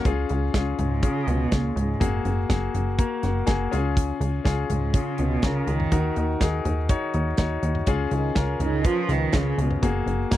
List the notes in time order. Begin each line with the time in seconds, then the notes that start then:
0.05 C#2 C#3 C#4 F4 G#4, kick, closed hi-hat
0.29 C#2, closed hi-hat
0.54 C#2 C#4 F4 G#4, kick, snare, closed hi-hat
0.79 C#2 G#2, closed hi-hat, floor tom
1.03 C#3 C#4 F4 G#4, kick, closed hi-hat
1.27 C#2 B2, closed hi-hat
1.51 C#2 A#2 C#4 F4 G#4, kick, snare, closed hi-hat
1.76 C#2 G#2, closed hi-hat
2.00 F#1 A#3 F#4 G#4, kick, closed hi-hat
2.25 F#1, closed hi-hat
2.50 F#1 A#3 F#4 G#4, kick, snare, closed hi-hat
2.74 F#1, closed hi-hat, floor tom
2.98 A#3 F#4 A#4, kick, closed hi-hat
3.23 F#1 F#5, snare, closed hi-hat
3.46 F#1 A#3 F#4 G#4 G#5, kick, snare, closed hi-hat
3.71 C#2 C#3 C#4 F4 G#4 G#5, closed hi-hat
3.97 kick, closed hi-hat
4.20 C#2, closed hi-hat
4.44 C#2 C#4 F4 G#4, kick, snare, closed hi-hat
4.70 C#2 G#2, closed hi-hat, floor tom
4.94 C#3 C#4 F4 G#4, kick, closed hi-hat
5.18 C#2 B2, closed hi-hat
5.42 C#2 C#3 C#4 F4 A#4, kick, snare, closed hi-hat
5.67 C#2 D#3, closed hi-hat
5.80 floor tom
5.92 D#2 D#3 D#4 F#4 A#4, kick, closed hi-hat
6.16 D#2, closed hi-hat
6.40 D#2 D#4 F#4 G#4, kick, snare, closed hi-hat
6.65 D#2, closed hi-hat, floor tom
6.89 D#4 F#4 C#5, kick, closed hi-hat
7.14 D#2, closed hi-hat
7.37 D#2 D#4 F#4 C#5, kick, snare, closed hi-hat
7.63 D#2, closed hi-hat
7.75 floor tom
7.86 C#2 C#3 C#4 F4 G#4, kick, closed hi-hat
8.11 C#2 D#3 D#4, closed hi-hat
8.35 C#2 C#3 C#4 F4 A#4, kick, snare, closed hi-hat
8.60 C#2 C#3 D#3 D#4, closed hi-hat, floor tom
8.84 F3 C#4 F4 B4, kick, closed hi-hat
9.09 C#2 D#3, snare, closed hi-hat
9.33 C#2 C#4 F4 G#4, kick, snare, closed hi-hat
9.37 C#3
9.58 C#2 B2, closed hi-hat
9.71 floor tom
9.82 F#1 A#3 F#4 G#4, kick, closed hi-hat
10.06 F#1, closed hi-hat
10.31 F#1 A#3 F#4 A#4, kick, snare, closed hi-hat